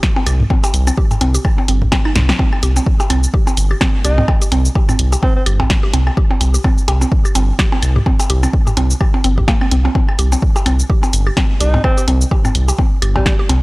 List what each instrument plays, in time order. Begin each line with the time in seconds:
0.03 kick, snare
0.16 synth arpeggio sound C4, percussion blips
0.27 analog synth bass C2, synth arpeggio sound G4, closed hi-hat, cabasa, claves
0.40 mid tom
0.50 synth arpeggio sound C4, kick, percussion blips
0.64 synth arpeggio sound G4, closed hi-hat, percussion blips, cabasa
0.74 analog synth bass C2, closed hi-hat, cabasa
0.87 synth arpeggio sound C4, cabasa, claves, percussion blips
0.97 synth arpeggio sound G4, kick
1.11 mid tom, percussion blips, cabasa
1.21 analog synth bass C2, synth arpeggio sound C4, closed hi-hat, percussion blips
1.35 synth arpeggio sound G4, closed hi-hat, cabasa
1.45 kick, percussion blips, claves
1.58 synth arpeggio sound C4, percussion blips
1.68 analog synth bass G1, synth arpeggio sound C4, closed hi-hat
1.82 kick, mid tom
1.92 synth arpeggio sound C4, kick, snare, percussion blips
2.05 synth arpeggio sound D#4, claves
2.16 analog synth bass C2, snare, closed hi-hat, mid tom
2.29 synth arpeggio sound C4, snare, percussion blips
2.39 synth arpeggio sound C4, kick, percussion blips
2.53 percussion blips, claves
2.63 analog synth bass C2, synth arpeggio sound G4, closed hi-hat, cabasa
2.76 synth arpeggio sound C4, cabasa, percussion blips
2.86 kick
3.00 synth arpeggio sound G4, percussion blips, cabasa
3.10 analog synth bass C2, synth arpeggio sound C4, closed hi-hat, claves, percussion blips
3.23 cabasa
3.34 synth arpeggio sound G4, kick
3.47 synth arpeggio sound C4, percussion blips, cabasa
3.57 analog synth bass G1, closed hi-hat, cabasa
3.71 synth arpeggio sound G4, claves
3.81 synth arpeggio sound C4, kick, snare, percussion blips
4.04 analog synth bass C2, alto saxophone D#4, synth arpeggio sound G4, closed hi-hat, cabasa
4.18 synth arpeggio sound C4, mid tom, percussion blips
4.28 kick, percussion blips, claves
4.42 synth arpeggio sound G4, closed hi-hat, cabasa
4.52 analog synth bass C2, synth arpeggio sound C4, closed hi-hat, percussion blips
4.65 cabasa
4.75 synth arpeggio sound G4, kick, percussion blips
4.89 synth arpeggio sound C4, mid tom, cabasa, claves, percussion blips
4.99 analog synth bass C2, closed hi-hat
5.12 synth arpeggio sound G4, percussion blips, cabasa
5.23 alto saxophone C4, synth arpeggio sound C4, kick, percussion blips
5.36 alto saxophone C4
5.46 analog synth bass G1, synth arpeggio sound G4, closed hi-hat, claves
5.60 synth arpeggio sound C4, kick, mid tom, percussion blips
5.70 kick, snare
5.83 synth arpeggio sound G4
5.94 analog synth bass C2, synth arpeggio sound C4, closed hi-hat, percussion blips
6.07 percussion blips, claves
6.17 synth arpeggio sound G4, kick
6.31 synth arpeggio sound C4, percussion blips
6.41 analog synth bass C2, closed hi-hat, percussion blips, cabasa
6.54 synth arpeggio sound G4, cabasa
6.64 synth arpeggio sound C4, kick, claves, percussion blips
6.78 cabasa
6.88 analog synth bass C2, synth arpeggio sound G4, closed hi-hat, percussion blips
7.01 synth arpeggio sound C4, cabasa, percussion blips
7.12 kick
7.25 synth arpeggio sound G4, cabasa, claves
7.35 analog synth bass G1, synth arpeggio sound C4, closed hi-hat, percussion blips, cabasa
7.59 synth arpeggio sound G4, kick, snare
7.72 synth arpeggio sound C4, percussion blips
7.82 analog synth bass C2, closed hi-hat, cabasa, claves
7.96 synth arpeggio sound G4, mid tom
8.06 synth arpeggio sound C4, kick, percussion blips
8.20 closed hi-hat, percussion blips, cabasa
8.30 analog synth bass C2, synth arpeggio sound G4, closed hi-hat
8.43 synth arpeggio sound C4, cabasa, claves, percussion blips
8.53 kick
8.67 synth arpeggio sound G4, mid tom, percussion blips, cabasa
8.77 analog synth bass C2, synth arpeggio sound C4, closed hi-hat, percussion blips
8.90 cabasa
9.01 synth arpeggio sound G4, kick, percussion blips, claves
9.14 synth arpeggio sound C4, percussion blips
9.24 analog synth bass G1, synth arpeggio sound C4, closed hi-hat
9.38 synth arpeggio sound G4, kick, mid tom
9.48 synth arpeggio sound A#3, kick, snare, percussion blips
9.61 synth arpeggio sound C4, claves
9.71 analog synth bass C2, synth arpeggio sound C4, closed hi-hat
9.85 synth arpeggio sound C4, percussion blips
9.95 synth arpeggio sound C4, kick, percussion blips
10.09 percussion blips, claves
10.19 analog synth bass C2, synth arpeggio sound G4, closed hi-hat, cabasa
10.32 synth arpeggio sound C4, cabasa, percussion blips
10.42 kick
10.56 synth arpeggio sound G4, percussion blips, cabasa
10.66 analog synth bass C2, synth arpeggio sound C4, closed hi-hat, claves, percussion blips
10.79 cabasa
10.90 synth arpeggio sound G4, kick
11.03 synth arpeggio sound C4, percussion blips, cabasa
11.13 analog synth bass G1, closed hi-hat, cabasa
11.27 synth arpeggio sound G4, claves
11.37 synth arpeggio sound C4, kick, snare, percussion blips
11.60 analog synth bass C2, alto saxophone D#4, synth arpeggio sound G4, closed hi-hat, cabasa
11.74 synth arpeggio sound C4, mid tom, percussion blips
11.84 alto saxophone C4, kick, percussion blips, claves
11.98 synth arpeggio sound G4, closed hi-hat, cabasa
12.08 analog synth bass C2, synth arpeggio sound C4, closed hi-hat, percussion blips
12.21 cabasa
12.31 synth arpeggio sound G4, kick, percussion blips
12.45 synth arpeggio sound C4, mid tom, cabasa, claves, percussion blips
12.55 analog synth bass C2, closed hi-hat
12.68 synth arpeggio sound G4, percussion blips, cabasa
12.78 synth arpeggio sound C4, kick, percussion blips
13.02 analog synth bass G1, synth arpeggio sound G4, closed hi-hat, claves
13.16 alto saxophone G3, synth arpeggio sound C4, kick, mid tom, percussion blips
13.26 alto saxophone G3, kick, snare
13.39 synth arpeggio sound G4
13.49 analog synth bass C2, synth arpeggio sound C4, closed hi-hat, percussion blips